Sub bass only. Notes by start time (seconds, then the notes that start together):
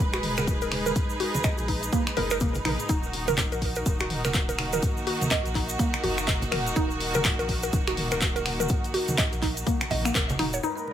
0.00 D#1
1.59 A#1
2.17 F#1
2.65 A#1
2.89 D#1
3.52 A#1
3.86 D#1
5.46 A#1
6.04 F#1
6.52 D#1
6.76 D#1
7.39 A#1
7.73 D#1
9.33 A#1
9.91 A#1
10.15 F#1
10.39 D#1